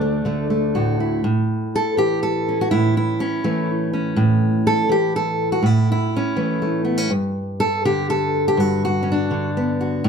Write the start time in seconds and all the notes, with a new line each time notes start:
Already playing: D2 D3 D4
0.01 A3
0.25 D3 A3
0.50 A3
0.75 A2 F#4
1.00 E4
1.24 A2
1.76 A4
1.97 E3 G4
2.23 A4
2.49 C#4
2.61 F#4
2.71 A2 E4
2.97 E4
3.20 C#4
3.44 E3 A3
3.93 C#4
4.16 A2
4.67 A4
4.89 E3 G4
5.16 A4
5.52 F#4
5.63 A2 E4
5.92 E4
6.17 C#4
6.36 E3 A3
6.62 A3
6.85 B3
6.98 C#4
7.10 G2
7.60 A4
7.85 D3 G4
8.10 A4
8.48 G4
8.57 G2 F#4
8.85 F#4
9.03 C#4
9.12 D4
9.31 D3
9.57 B3
9.81 F#4
10.04 A2